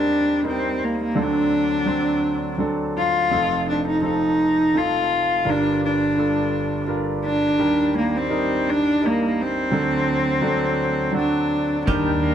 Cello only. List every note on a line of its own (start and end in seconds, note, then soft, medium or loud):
0.00 0.47 D4 medium
0.48 0.86 C4 medium
0.84 1.00 A#3 medium
1.04 1.23 A#3 medium
1.22 2.62 D4 medium
2.99 3.65 F4 loud
3.70 3.85 D4 medium
3.87 4.03 D#4 medium
4.05 4.79 D#4 medium
4.77 5.51 F4 medium
5.50 5.83 D4 medium
5.85 6.86 D4 medium
7.26 7.92 D4 medium
7.98 8.18 A#3 medium
8.17 8.71 C4 medium
8.69 9.08 D4 medium
9.06 9.43 A#3 medium
9.42 11.17 C4 medium
11.18 11.85 D4 medium
11.89 12.35 D4 medium